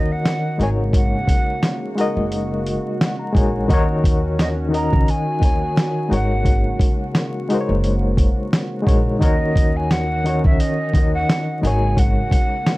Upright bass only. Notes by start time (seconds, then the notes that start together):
Already playing: D#2
0.59 G#1
2.17 F#1
3.35 A#1
3.70 D#2
4.93 C#2
5.42 D#2
6.11 G#1
7.69 F#1
8.87 A#1
9.21 D#2
10.45 C#2
10.94 D#2
11.63 G#1